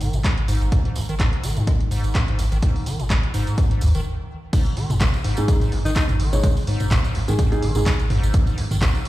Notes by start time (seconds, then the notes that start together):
0.01 D#3, open hi-hat, tambourine
0.13 G#1 G#2, closed hi-hat, tambourine
0.24 G#3, kick, clap, closed hi-hat, tambourine
0.38 closed hi-hat
0.48 G#2, open hi-hat, tambourine
0.61 G#1, closed hi-hat, tambourine
0.72 G#1, kick, closed hi-hat, tambourine
0.85 G#2, closed hi-hat
0.96 G#1, open hi-hat, tambourine
1.09 D#3, closed hi-hat, tambourine
1.20 G#2, kick, clap, closed hi-hat, tambourine
1.33 closed hi-hat
1.43 D#3, open hi-hat, tambourine
1.57 G#2, closed hi-hat, tambourine
1.67 G#3, kick, closed hi-hat, tambourine
1.80 closed hi-hat
1.91 G#2, open hi-hat, tambourine
2.04 G#1, closed hi-hat, tambourine
2.15 G#1, kick, clap, closed hi-hat
2.28 G#2, closed hi-hat
2.39 G#1, open hi-hat, tambourine
2.52 G#1 D#3, closed hi-hat, tambourine
2.62 G#1 G#2, kick, closed hi-hat, tambourine
2.76 open hi-hat
2.86 D#3, open hi-hat, tambourine
3.00 G#2, closed hi-hat, tambourine
3.10 G#3, kick, clap, closed hi-hat
3.23 closed hi-hat
3.34 G#2, open hi-hat, tambourine
3.47 G#2, closed hi-hat, tambourine
3.58 G#1, kick, closed hi-hat, tambourine
3.71 G#2, closed hi-hat
3.81 G#1 D#2, open hi-hat, tambourine
3.95 F#1 D#3, closed hi-hat, tambourine
4.53 G#1 G#2, kick, closed hi-hat, crash, tambourine
4.66 closed hi-hat, tambourine
4.77 D#3, open hi-hat
4.90 G#2, closed hi-hat, mid tom, tambourine
5.00 G#3, kick, clap, closed hi-hat, tambourine
5.14 closed hi-hat, tambourine
5.24 G#2, open hi-hat
5.37 G#2 G#3 D#4 G#4, closed hi-hat, tambourine
5.48 G#1, kick, closed hi-hat, tambourine
5.61 G#2, closed hi-hat, tambourine
5.72 G#1, open hi-hat
5.85 G#1 D#3 D#4, closed hi-hat, tambourine
5.96 G#2 D#4, kick, clap, closed hi-hat, tambourine
6.09 closed hi-hat, mid tom, tambourine
6.20 D#3, open hi-hat
6.33 G#1 G#2 G#3 D#4 C#5, closed hi-hat, tambourine
6.43 G#1 G#3, kick, closed hi-hat, tambourine
6.57 open hi-hat, tambourine
6.67 G#2, open hi-hat
6.80 closed hi-hat, mid tom, tambourine
6.91 G#1, kick, clap, closed hi-hat, tambourine
7.04 G#2, closed hi-hat, tambourine
7.15 G#1, open hi-hat
7.28 G#2 D#3 G#3 D#4 G#4, closed hi-hat, tambourine
7.39 G#2, kick, closed hi-hat, tambourine
7.52 G#3 D#4 G#4, closed hi-hat, tambourine
7.63 D#3, open hi-hat
7.75 G#1 G#2 G#3 D#4 G#4, closed hi-hat, mid tom, tambourine
7.86 G#3, kick, clap, closed hi-hat, tambourine
7.99 closed hi-hat, tambourine
8.10 G#2, mid tom, open hi-hat
8.23 G#1, closed hi-hat, tambourine
8.34 G#1, kick, closed hi-hat, tambourine
8.47 G#2, closed hi-hat, tambourine
8.58 G#1, open hi-hat
8.71 D#3, closed hi-hat, mid tom, tambourine
8.82 G#2, kick, clap, closed hi-hat, tambourine
8.95 closed hi-hat, tambourine
9.05 D#3, open hi-hat